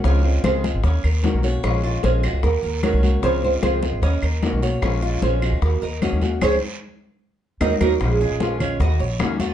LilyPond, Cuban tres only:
\new Staff \with { instrumentName = "Cuban tres" } { \time 4/4 \key ees \dorian \tempo 4 = 151 des'4 aes'4 des'8 bes'4 des''8~ | des''8 f'8 des'8 ges'4 bes'8 des''4 | des'4 aes'4 des'8 bes'4 des''8~ | des''8 f'8 des'8 ges'4 bes'8 des''4 |
<aes' c'' des''>8 r2 r8 <ees' ges' bes'>8 <ees' ges' bes'>8 | r8 aes'4 des'8 ges'8 des''4 f'8 | }